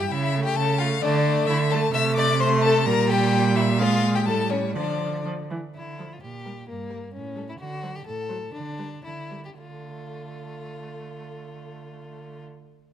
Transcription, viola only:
0.34 0.79 A3 medium
0.80 1.02 A3 medium
1.03 1.24 A3 medium
1.25 1.70 A3 medium
1.71 1.93 A3 loud
1.93 2.36 A3 loud
2.41 2.85 A3 loud
2.86 3.80 G3 loud
3.78 4.27 G#3 loud
4.26 4.77 G3 medium
4.75 5.20 F3 medium
5.25 5.33 F3 medium
5.51 5.59 E3 medium
5.99 6.07 F3 soft
6.46 6.53 G3 soft
6.90 6.97 G3 soft
7.35 7.43 G3 soft
7.83 7.90 F#3 soft
8.29 8.37 F#3 soft
8.78 8.86 G3 soft
9.31 9.39 G3 soft
9.58 12.43 A3 soft

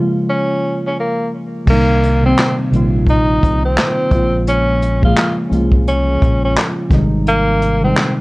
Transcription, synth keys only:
0.00 1.69 C#3 medium
0.00 1.69 F3 medium
0.00 1.69 G#3 medium
0.00 1.69 A#3 medium
0.00 1.69 F4 medium
1.65 1.99 C3 medium
1.65 2.00 D#3 medium
1.65 2.01 G3 medium
1.70 2.01 A#3 medium
1.70 2.02 D#4 loud
2.22 2.54 C3 medium
2.22 2.55 D#3 medium
2.22 2.55 G3 medium
2.22 2.56 A#3 medium
2.26 2.57 C4 medium
2.70 3.61 C3 medium
2.70 3.61 D#3 medium
2.70 3.62 G3 medium
2.70 3.62 A#3 medium
2.76 3.63 F4 medium
4.10 4.81 C#3 medium
4.10 4.81 F3 medium
4.10 4.82 G#3 medium
4.10 4.82 A#3 medium
4.15 4.83 F4 medium
5.01 5.34 C#3 medium
5.01 5.34 F3 medium
5.01 5.35 G#3 medium
5.01 5.35 A#3 medium
5.06 5.36 G#4 medium
5.49 6.40 F3 medium
5.49 6.41 G#3 medium
5.49 6.42 A#3 medium
5.49 6.40 C#4 medium
5.54 6.42 F4 medium
6.89 7.59 C3 medium
6.89 7.60 D#3 medium
6.89 7.61 G3 medium
6.89 7.61 G#3 medium
6.94 7.62 D#4 loud
7.81 8.13 C3 medium
7.81 8.13 D#3 medium
7.81 8.14 G3 medium
7.81 8.15 G#3 medium
7.86 8.15 D#4 medium

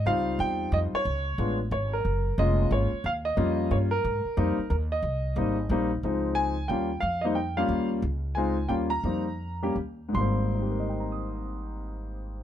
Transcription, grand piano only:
0.06 0.98 G3 medium
0.06 0.98 C4 medium
0.06 0.98 D#4 medium
0.06 0.98 F4 medium
0.06 0.37 F5 loud
0.40 0.74 G5 loud
0.73 0.78 D#5 medium
0.95 1.56 C#5 loud
1.38 1.57 G#3 soft
1.38 1.58 B3 soft
1.38 1.58 D4 medium
1.38 1.58 F4 medium
1.72 1.91 C#5 medium
1.93 2.40 A#4 medium
2.38 2.88 G#3 medium
2.38 2.88 A#3 medium
2.38 2.88 C#4 medium
2.38 2.88 F4 medium
2.38 2.69 D#5 medium
2.72 3.06 C#5 medium
3.06 3.11 F5 medium
3.25 3.72 D#5 medium
3.37 3.87 G3 medium
3.37 3.87 A#3 medium
3.37 3.87 C#4 medium
3.37 3.88 F4 medium
3.71 3.76 C#5 medium
3.91 4.66 A#4 loud
4.37 4.56 G3 medium
4.37 4.56 A#3 medium
4.37 4.56 C4 medium
4.37 4.56 D#4 medium
4.70 4.75 A#4 medium
4.92 5.66 D#5 medium
5.36 5.55 G3 medium
5.36 5.56 A#3 medium
5.36 5.56 C4 medium
5.36 5.56 D#4 medium
5.71 5.89 G3 medium
5.71 5.89 A#3 medium
5.71 5.89 C4 medium
5.71 5.90 D#4 medium
6.04 6.53 F3 medium
6.04 6.53 G#3 medium
6.04 6.54 C4 medium
6.04 6.54 D#4 medium
6.35 6.66 G#5 loud
6.68 6.89 G3 medium
6.68 6.89 A#3 medium
6.68 6.89 C#4 medium
6.68 6.89 F4 medium
6.68 7.00 G5 medium
7.00 7.23 F5 medium
7.21 7.35 G3 medium
7.21 7.35 A#3 medium
7.21 7.35 C4 medium
7.21 7.35 D#4 medium
7.21 7.34 D#5 medium
7.35 7.57 G5 medium
7.57 8.00 G3 medium
7.57 8.00 A#3 medium
7.57 8.00 C#4 medium
7.57 8.00 F4 medium
7.57 7.88 F5 medium
8.35 8.55 G#3 medium
8.35 8.56 C4 medium
8.35 8.56 D#4 medium
8.35 8.56 F4 medium
8.35 8.67 G#5 medium
8.69 8.89 G3 medium
8.69 8.89 A#3 medium
8.69 8.89 C#4 medium
8.69 8.89 F4 medium
8.69 8.74 G5 medium
8.90 9.71 A#5 loud
9.05 9.24 G3 medium
9.05 9.24 A#3 medium
9.05 9.25 C4 medium
9.05 9.25 D#4 medium
9.62 9.75 G3 medium
9.62 9.75 A#3 medium
9.62 9.75 C#4 medium
9.62 9.75 G4 medium
10.09 12.43 G#2 medium
10.09 12.43 G3 medium
10.15 12.43 A#3 medium
10.15 12.43 C6 medium
10.21 12.43 C4 medium
10.55 12.43 D#4 soft
10.62 12.43 G4 soft
10.70 12.43 A#4 soft
10.80 12.43 D#5 soft
10.89 12.43 G5 soft
11.00 12.43 A#5 soft
11.12 12.43 D#6 soft

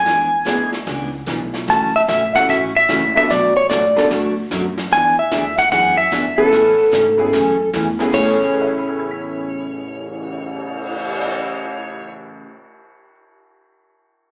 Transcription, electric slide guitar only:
0.00 0.69 G#5 medium
1.70 1.94 A5 loud
1.96 2.01 E5 medium
2.09 2.33 E5 loud
2.36 2.48 F#5 medium
2.50 2.57 E5 loud
2.76 3.16 E5 medium
3.17 3.29 E5 medium
3.31 3.56 D5 medium
3.57 3.69 C#5 medium
3.70 4.07 D5 medium
4.93 5.16 G#5 loud
5.19 5.56 E5 loud
5.59 5.71 F#5 medium
5.72 5.96 F#5 loud
5.97 6.35 E5 loud
6.38 7.69 A4 medium
8.14 12.12 C#5 medium

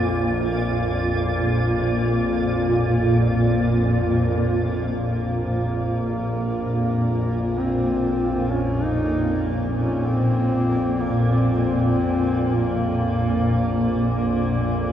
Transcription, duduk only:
5.08 7.61 A#3 medium
7.59 8.53 C4 medium
8.51 8.85 C#4 medium
8.83 9.50 D#4 medium
9.77 10.08 C#4 medium
10.07 11.02 C4 medium
11.00 11.34 A#3 medium
11.32 12.54 C4 medium
12.55 14.34 A#3 medium

